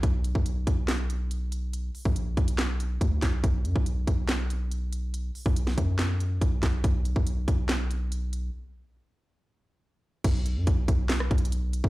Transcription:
0.03 808-style bass B1, kick, closed hi-hat
0.24 closed hi-hat
0.35 808-style bass B1, kick
0.46 closed hi-hat
0.67 808-style bass B1, kick, closed hi-hat
0.88 snare, clap, closed hi-hat
1.10 closed hi-hat
1.31 closed hi-hat
1.52 closed hi-hat
1.73 closed hi-hat
1.95 open hi-hat
2.05 808-style bass A#1, kick
2.16 closed hi-hat
2.37 808-style bass B1, kick, closed hi-hat
2.48 closed hi-hat
2.58 snare, clap, closed hi-hat
2.80 closed hi-hat
3.01 808-style bass D2, kick, closed hi-hat
3.22 808-style bass B1, kick, snare, clap, closed hi-hat
3.44 808-style bass B1, kick, closed hi-hat
3.65 808-style bass F#2, closed hi-hat
3.76 808-style bass B1, kick
3.86 closed hi-hat
4.07 808-style bass B1, kick, closed hi-hat
4.29 snare, clap, closed hi-hat
4.50 closed hi-hat
4.71 closed hi-hat
4.92 closed hi-hat
5.14 closed hi-hat
5.35 open hi-hat
5.46 808-style bass B1, kick
5.56 closed hi-hat
5.67 snare
5.78 808-style bass F#2, kick, closed hi-hat
5.99 snare, clap, closed hi-hat
6.20 closed hi-hat
6.41 808-style bass B1, kick, closed hi-hat
6.63 808-style bass B1, kick, snare, clap, closed hi-hat
6.84 808-style bass B1, kick, closed hi-hat
7.05 closed hi-hat
7.16 808-style bass B1, kick
7.27 closed hi-hat
7.48 808-style bass B1, kick, closed hi-hat
7.69 snare, clap, closed hi-hat
7.91 closed hi-hat
8.12 closed hi-hat
8.33 closed hi-hat
10.24 808-style bass B1, kick, closed hi-hat, crash
10.46 closed hi-hat
10.56 808-style bass F#2
10.67 808-style bass B1, kick, closed hi-hat
10.88 808-style bass B1, kick, closed hi-hat
11.09 snare, clap, closed hi-hat
11.20 cross-stick
11.31 808-style bass B1, kick, closed hi-hat
11.38 closed hi-hat
11.45 closed hi-hat
11.52 closed hi-hat
11.73 closed hi-hat
11.84 808-style bass B1, kick

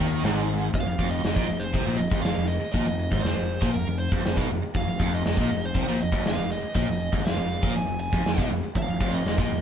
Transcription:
Already playing: tonewheel organ F4 G#4 C5 F5
0.00 fingered electric bass D#2, overdriven electric guitar D#3
0.23 fingered electric bass G#1, overdriven electric guitar G#2, snare, open hi-hat
0.49 open hi-hat
0.74 fingered electric bass F1, overdriven electric guitar F2, lead electric guitar F5, kick, open hi-hat
0.87 fingered electric bass F1, overdriven electric guitar F2
0.99 fingered electric bass F1, overdriven electric guitar F2, kick, open hi-hat
1.11 lead electric guitar D#5
1.24 fingered electric bass F1, overdriven electric guitar F2, snare, open hi-hat
1.36 fingered electric bass A#1, overdriven electric guitar A#2, kick, snare
1.49 fingered electric bass F1, overdriven electric guitar F2, open hi-hat
1.60 lead electric guitar C5
1.74 fingered electric bass C2, overdriven electric guitar C3, kick, open hi-hat
1.86 fingered electric bass A#1, overdriven electric guitar A#2
1.97 fingered electric bass F1, overdriven electric guitar F2, lead electric guitar D#5, open hi-hat
2.11 fingered electric bass F1, overdriven electric guitar F2, kick
2.22 fingered electric bass F1, overdriven electric guitar F2, lead electric guitar F5, snare, open hi-hat
2.37 fingered electric bass F1, overdriven electric guitar F2
2.48 lead electric guitar D#5, snare, open hi-hat
2.62 muted overdriven electric guitar stroke, muted fingered electric bass stroke
2.72 fingered electric bass A#1, overdriven electric guitar A#2, lead electric guitar D#5, kick, open hi-hat
2.87 fingered electric bass F1, overdriven electric guitar F2
2.99 open hi-hat
3.12 fingered electric bass G#1, overdriven electric guitar G#2, kick
3.22 fingered electric bass F1, overdriven electric guitar F2, lead electric guitar C5, snare, open hi-hat
3.36 fingered electric bass F1, overdriven electric guitar F2
3.49 open hi-hat
3.62 fingered electric bass A#1, overdriven electric guitar A#2, kick
3.74 fingered electric bass F1, overdriven electric guitar F2, lead electric guitar A#4, open hi-hat
3.87 fingered electric bass F1, overdriven electric guitar F2
3.99 lead electric guitar C5, open hi-hat
4.12 fingered electric bass F1, overdriven electric guitar F2, kick
4.25 fingered electric bass F1, overdriven electric guitar F2, snare, open hi-hat
4.37 fingered electric bass B1, overdriven electric guitar B2, kick
4.49 fingered electric bass F1, overdriven electric guitar F2, open hi-hat
4.62 muted fingered electric bass stroke, muted overdriven electric guitar stroke
4.75 fingered electric bass F1, overdriven electric guitar F2, lead electric guitar F5, kick, open hi-hat
4.87 fingered electric bass F1, overdriven electric guitar F2
5.00 fingered electric bass F1, overdriven electric guitar F2, kick, open hi-hat
5.15 lead electric guitar D#5
5.25 fingered electric bass F1, overdriven electric guitar F2, snare, open hi-hat
5.37 fingered electric bass A#1, overdriven electric guitar A#2, kick
5.50 fingered electric bass F1, overdriven electric guitar F2, open hi-hat
5.65 lead electric guitar C5
5.75 fingered electric bass C2, overdriven electric guitar C3, kick, open hi-hat
5.88 fingered electric bass A#1, overdriven electric guitar A#2
6.00 fingered electric bass F1, overdriven electric guitar F2, lead electric guitar D#5, open hi-hat
6.12 fingered electric bass F1, overdriven electric guitar F2, kick
6.25 fingered electric bass F1, overdriven electric guitar F2, lead electric guitar F5, snare, open hi-hat
6.37 fingered electric bass F1, overdriven electric guitar F2
6.50 lead electric guitar D#5, snare, open hi-hat
6.63 muted overdriven electric guitar stroke, muted fingered electric bass stroke
6.75 fingered electric bass A#1, overdriven electric guitar A#2, lead electric guitar D#5, kick, open hi-hat
6.88 fingered electric bass F1, overdriven electric guitar F2
7.01 open hi-hat
7.13 fingered electric bass G#1, overdriven electric guitar G#2, kick
7.26 fingered electric bass F1, overdriven electric guitar F2, lead electric guitar F5, snare, open hi-hat
7.38 fingered electric bass F1, overdriven electric guitar F2
7.51 open hi-hat
7.63 fingered electric bass A#1, overdriven electric guitar A#2, kick
7.75 fingered electric bass F1, overdriven electric guitar F2, lead electric guitar G#5, open hi-hat
7.88 fingered electric bass F1, overdriven electric guitar F2
8.00 lead electric guitar G#5, open hi-hat
8.13 fingered electric bass F1, overdriven electric guitar F2, kick
8.25 fingered electric bass F1, overdriven electric guitar F2, snare, open hi-hat
8.38 fingered electric bass B1, overdriven electric guitar B2, kick
8.51 fingered electric bass F1, overdriven electric guitar F2, open hi-hat
8.64 muted fingered electric bass stroke, muted overdriven electric guitar stroke
8.75 fingered electric bass F1, overdriven electric guitar F2, lead electric guitar F5, kick, open hi-hat
8.88 fingered electric bass F1, overdriven electric guitar F2
9.01 fingered electric bass F1, overdriven electric guitar F2, kick, open hi-hat
9.14 lead electric guitar D#5
9.25 fingered electric bass F1, overdriven electric guitar F2, snare, open hi-hat
9.38 fingered electric bass A#1, overdriven electric guitar A#2, kick, snare
9.51 fingered electric bass F1, overdriven electric guitar F2, open hi-hat

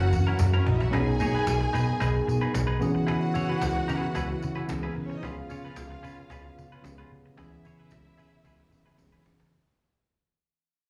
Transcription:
Already playing: fingered electric bass F#1, french horn section E3 A#3 F#4, tine electric piano F#3 C#4 E4 A#4, string section F#4 F#5
0.00 muted clean electric guitar stroke, cajon slap
0.12 fingered electric bass F#2, muted clean electric guitar stroke, cajon slap, tambourine
0.27 clean electric guitar C#4 E4 A#4
0.39 fingered electric bass F#2, muted clean electric guitar stroke, cajon bass, cajon slap, tambourine
0.54 clean electric guitar C#4 E4 A#4, string section C#4 C#5
0.66 fingered electric bass A#1, string section D#4 D#5, muted clean electric guitar stroke, cajon bass
0.76 string section E4 E5
0.80 string section F#4 F#5, muted clean electric guitar stroke, cajon bass
0.91 fingered electric bass B1, french horn section D#3 B3 G#4, tine electric piano F#3 B3 C#4 G#4, clean electric guitar D#4 G#4 B4, string section G#4 G#5, cajon bass
1.00 tine electric piano D#4
1.07 muted clean electric guitar stroke, cajon slap
1.20 fingered electric bass B2, clean electric guitar D#4 G#4 C#5, tambourine
1.35 clean electric guitar D#4 G#4 B4
1.47 fingered electric bass B1, cajon bass, cajon slap, tambourine
1.61 muted clean electric guitar stroke, cajon slap
1.73 fingered electric bass B2, clean electric guitar D#4 G#4 B4, tambourine
1.87 muted clean electric guitar stroke, cajon slap
2.00 fingered electric bass B1, clean electric guitar D#4 G#4 B4, cajon bass, tambourine
2.15 muted clean electric guitar stroke, cajon slap
2.27 fingered electric bass B2, muted clean electric guitar stroke, cajon slap, tambourine
2.41 clean electric guitar D#4 G#4 B4, cajon slap
2.54 fingered electric bass B1, cajon bass, cajon slap, tambourine
2.67 clean electric guitar D#4 G#4 B4, cajon slap
2.79 french horn section C#3 B3 E4, fingered electric bass C#3, tine electric piano E3 B3 C#4 G#4, string section F#4 F#5, muted clean electric guitar stroke, tambourine
2.95 muted clean electric guitar stroke, cajon slap
3.07 clean electric guitar E4 G#4 B4, cajon bass
3.21 muted clean electric guitar stroke, cajon slap
3.34 fingered electric bass C#3, clean electric guitar E4 G#4 C#5, tambourine
3.49 clean electric guitar E4 G#4 B4, cajon slap
3.62 fingered electric bass C#2, muted clean electric guitar stroke, cajon bass, cajon slap, tambourine
3.75 muted clean electric guitar stroke, cajon slap
3.88 fingered electric bass C#3, clean electric guitar E4 G#4 B4, tambourine
4.03 muted clean electric guitar stroke, cajon slap
4.15 fingered electric bass C#2, clean electric guitar E4 G#4 B4, cajon bass, tambourine
4.30 cajon slap
4.42 fingered electric bass C#3, muted clean electric guitar stroke, cajon slap, tambourine
4.56 clean electric guitar E4 G#4 B4, cajon slap
4.68 fingered electric bass C#2, tine electric piano E3 B3 C#4 G#4, string section F#3 F#4, muted clean electric guitar stroke, cajon bass, cajon slap, tambourine
4.79 string section G#3 G#4
4.83 clean electric guitar E4 G#4 B4, cajon slap
4.88 string section A#3 A#4
4.95 fingered electric bass C#3, string section B3 B4, muted clean electric guitar stroke
5.06 string section C#4 C#5, muted clean electric guitar stroke
5.11 cajon slap
5.15 string section D#4 D#5
5.22 fingered electric bass C#2, french horn section C#3 B3 F4, tine electric piano F3 B3 C#4 G#4, clean electric guitar C#4 F4 B4, string section F4 F5, cajon bass, tambourine
5.37 muted clean electric guitar stroke
5.49 fingered electric bass C#3, clean electric guitar C#4 F4 C#5, cajon slap, tambourine
5.65 clean electric guitar C#4 F4 B4, cajon slap
5.76 fingered electric bass C#2, cajon bass, cajon slap, tambourine
5.90 muted clean electric guitar stroke, cajon slap
6.03 fingered electric bass C#3, clean electric guitar C#4 F4 B4, cajon slap, tambourine
6.18 muted clean electric guitar stroke, cajon slap
6.30 fingered electric bass C#2, clean electric guitar C#4 F4 B4, cajon bass, tambourine
6.44 muted clean electric guitar stroke, cajon slap
6.57 fingered electric bass C#3, muted clean electric guitar stroke, cajon slap, tambourine
6.71 clean electric guitar C#4 F4 B4, cajon slap
6.82 fingered electric bass C#2, tine electric piano F3 B3 C#4 G4, cajon bass, cajon slap, tambourine
6.91 tine electric piano G#4
6.98 clean electric guitar C#4 F4 B4, cajon slap
7.12 fingered electric bass C#3, muted clean electric guitar stroke
7.25 muted clean electric guitar stroke, cajon slap
7.36 fingered electric bass C#2, french horn section C#3 E4, tine electric piano E3 B3 C#4 G#4, clean electric guitar E4 G#4 B4, string section E4 E5, cajon bass, tambourine
7.51 muted clean electric guitar stroke, cajon slap
7.64 fingered electric bass C#3, clean electric guitar E4 G#4 C#5, cajon slap, tambourine
7.79 clean electric guitar E4 G#4 B4, cajon slap
7.91 fingered electric bass C#2, muted clean electric guitar stroke, cajon bass, cajon slap, tambourine
8.05 muted clean electric guitar stroke, cajon slap
8.18 fingered electric bass C#3, clean electric guitar E4 G#4 B4, tambourine
8.33 muted clean electric guitar stroke
8.45 fingered electric bass C#2, clean electric guitar E4 G#4 B4, cajon bass, cajon slap, tambourine
8.59 muted clean electric guitar stroke, cajon slap
8.71 fingered electric bass C#3, muted clean electric guitar stroke, cajon slap, tambourine
8.86 clean electric guitar E4 G#4 B4, cajon slap
8.98 fingered electric bass C#2, tine electric piano E3 B3 C#4 G#4, muted clean electric guitar stroke, cajon bass, cajon slap, tambourine
9.12 clean electric guitar E4 G#4 B4
9.25 fingered electric bass C#3, muted clean electric guitar stroke, cajon slap, tambourine
9.40 muted clean electric guitar stroke, cajon slap

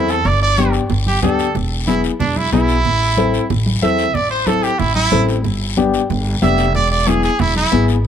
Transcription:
Already playing: upright bass E2, upright piano C4 E4 A4, trumpet E4
0.08 trumpet A4, short guiro
0.25 upright bass G1, trumpet D5, low conga, long guiro
0.42 trumpet D5
0.57 upright piano B3 D4 G4, high conga, short guiro
0.73 short guiro
0.90 upright bass G1, low conga, long guiro
1.07 trumpet G4, high conga
1.22 upright bass D2, upright piano B3 D4 G4, trumpet A4, high conga, low conga, short guiro
1.39 short guiro
1.55 upright bass E1, low conga, long guiro
1.87 upright piano B3 E4 G#4, trumpet E4, high conga, short guiro
2.04 short guiro
2.20 upright bass E1, trumpet D4, low conga, long guiro
2.36 trumpet E4, high conga
2.52 upright bass B1, upright piano B3 E4 G#4, trumpet E4, high conga, short guiro
2.68 short guiro
2.85 upright bass A1, low conga, long guiro
3.17 upright piano C4 E4 A4, high conga, short guiro
3.34 short guiro
3.50 upright bass A1, low conga, long guiro
3.66 high conga
3.82 upright bass E2, upright piano C4 E4 A4, trumpet E5, high conga, short guiro
3.98 short guiro
4.14 upright bass A1, trumpet D5, low conga, long guiro
4.31 trumpet C5
4.47 upright piano C4 E4 A4, trumpet A4, high conga, short guiro
4.63 trumpet G4, short guiro
4.79 upright bass A1, trumpet E4, low conga, long guiro
4.95 trumpet E4, high conga
5.12 upright bass A1, upright piano C4 E4 A4, high conga, low conga, short guiro
5.29 short guiro
5.44 upright bass G1, low conga, long guiro
5.77 upright piano B3 D4 G4, high conga, short guiro
5.94 short guiro
6.10 upright bass G1, low conga, long guiro
6.42 upright bass F1, upright piano B3 D4 G4, trumpet E5, high conga, short guiro
6.58 short guiro
6.75 upright bass E1, trumpet D5, low conga, long guiro
6.92 trumpet D5
7.06 upright piano B3 E4 G#4, trumpet G#4, high conga, short guiro
7.23 trumpet G#4, short guiro
7.39 upright bass E1, trumpet E4, low conga, long guiro
7.56 trumpet E4, high conga
7.72 upright bass G#1, upright piano B3 E4 G#4, high conga, short guiro
7.88 short guiro
8.04 upright bass A1

